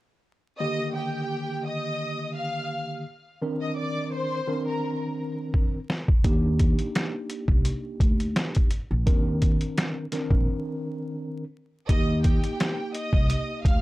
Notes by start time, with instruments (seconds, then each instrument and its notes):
0.59 tine electric piano D3 D#3 A#3 G4, violin section D#5 D#6
0.95 violin section G4 G5
1.66 violin section D#5 D#6
2.35 violin section F5 F6
3.41 tine electric piano D#3 C4 D4 A#4
3.61 violin section D#5 D#6
3.77 violin section D5 D6
4.13 violin section C5 C6
4.47 tine electric piano D#3 C4 D4 A#4
4.67 violin section A#4 A#5
5.54 kick
5.90 snare
6.08 kick
6.24 upright bass D#2, tine electric piano A#3 D4 D#4 G4, kick, closed hi-hat
6.59 kick, closed hi-hat
6.79 closed hi-hat
6.95 snare, closed hi-hat
7.30 closed hi-hat
7.48 upright bass C2, kick
7.65 closed hi-hat
8.00 upright bass D2, kick, closed hi-hat
8.20 closed hi-hat
8.36 snare, closed hi-hat
8.55 kick, closed hi-hat
8.71 closed hi-hat
8.91 upright bass A#1
9.06 upright bass D#2, tine electric piano D#3 C4 D4 A#4, kick, closed hi-hat
9.42 kick, closed hi-hat
9.61 closed hi-hat
9.78 snare, closed hi-hat
10.12 tine electric piano D#3 C4 D4 A#4, snare, closed hi-hat
10.30 upright bass A#1, kick
11.89 upright bass D#2, tine electric piano A#3 D#4 G4, violin section D#5 D#6, kick, closed hi-hat
12.24 violin section G4 G5, kick, closed hi-hat
12.44 closed hi-hat
12.60 snare, closed hi-hat
12.95 violin section D#5 D#6, closed hi-hat
13.13 upright bass C2, kick
13.30 closed hi-hat
13.65 upright bass D2, violin section F5 F6, kick, closed hi-hat